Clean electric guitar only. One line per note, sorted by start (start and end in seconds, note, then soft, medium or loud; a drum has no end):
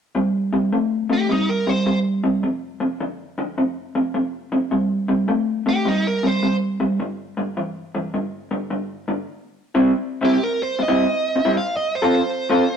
0.15 0.49 C3 medium
0.15 0.49 G3 medium
0.53 0.70 C3 medium
0.53 0.71 G3 medium
0.73 1.06 C3 medium
0.73 1.07 A3 medium
1.10 1.27 C3 medium
1.10 1.28 A3 medium
1.29 1.63 C3 medium
1.29 1.63 G3 medium
1.67 1.85 C3 medium
1.67 1.85 G3 medium
1.86 2.20 C3 medium
1.86 2.20 G3 medium
2.24 2.41 C3 medium
2.24 2.42 G3 medium
2.43 2.77 F2 medium
2.43 2.77 C3 medium
2.80 2.98 F2 medium
2.80 2.98 C3 medium
3.00 3.34 F2 medium
3.00 3.34 D3 medium
3.38 3.56 F2 medium
3.38 3.56 D3 medium
3.58 3.91 F2 medium
3.58 3.92 C3 medium
3.95 4.13 F2 medium
3.95 4.13 C3 medium
4.14 4.48 F2 medium
4.14 4.49 C3 medium
4.52 4.70 F2 medium
4.52 4.70 C3 medium
4.71 5.05 C3 medium
4.71 5.06 G3 medium
5.08 5.26 C3 medium
5.08 5.27 G3 medium
5.28 5.62 C3 medium
5.28 5.62 A3 medium
5.66 5.84 C3 medium
5.66 5.84 A3 medium
5.85 6.19 C3 medium
5.85 6.19 G3 medium
6.23 6.41 C3 medium
6.23 6.41 G3 medium
6.43 6.77 C3 medium
6.43 6.77 G3 medium
6.80 6.98 C3 medium
6.80 6.98 G3 medium
7.00 7.34 G2 medium
7.00 7.34 D3 medium
7.37 7.55 G2 medium
7.37 7.55 D3 medium
7.57 7.91 G2 medium
7.57 7.91 E3 medium
7.95 8.12 G2 medium
7.95 8.12 E3 medium
8.14 8.48 G2 medium
8.14 8.48 D3 medium
8.51 8.69 G2 medium
8.51 8.69 D3 medium
8.70 9.04 G2 medium
8.70 9.05 D3 medium
9.08 9.26 G2 medium
9.08 9.26 D3 medium
9.75 9.91 C3 medium
9.75 9.91 G3 medium
9.75 9.91 C4 medium
9.75 9.90 E4 medium
10.21 10.35 C3 medium
10.21 10.35 G3 medium
10.21 10.35 C4 medium
10.21 10.35 E4 medium
10.79 muted clean electric guitar stroke soft
10.88 11.05 C3 medium
10.88 11.04 G3 medium
10.88 11.04 C4 medium
10.88 11.04 E4 medium
11.36 muted clean electric guitar stroke soft
11.45 11.56 C3 medium
11.45 11.56 G3 medium
11.45 11.55 C4 medium
11.45 11.55 E4 medium
12.02 12.19 F3 medium
12.02 12.18 C4 medium
12.02 12.18 F4 medium
12.02 12.18 A4 medium
12.50 12.63 F3 medium
12.50 12.63 C4 medium
12.50 12.63 F4 medium
12.50 12.63 A4 medium